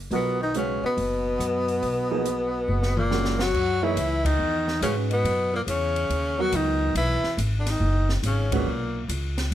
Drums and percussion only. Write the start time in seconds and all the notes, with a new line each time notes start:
0.11 open hi-hat
0.54 closed hi-hat
0.98 open hi-hat
1.40 cross-stick, closed hi-hat
1.68 open hi-hat
1.83 open hi-hat
2.25 closed hi-hat
2.83 snare
2.97 mid tom
3.11 snare
3.25 snare
3.39 snare
3.54 kick, crash
3.97 hi-hat pedal, ride
4.25 kick, ride
4.68 snare
4.82 hi-hat pedal, ride
5.11 ride
5.25 ride
5.68 hi-hat pedal, ride
5.96 ride
6.10 ride
6.52 hi-hat pedal, ride
6.95 ride
7.24 snare
7.38 hi-hat pedal, ride
7.66 snare, ride
8.09 snare
8.23 hi-hat pedal, ride
8.52 kick, ride
9.09 hi-hat pedal, ride
9.38 snare, ride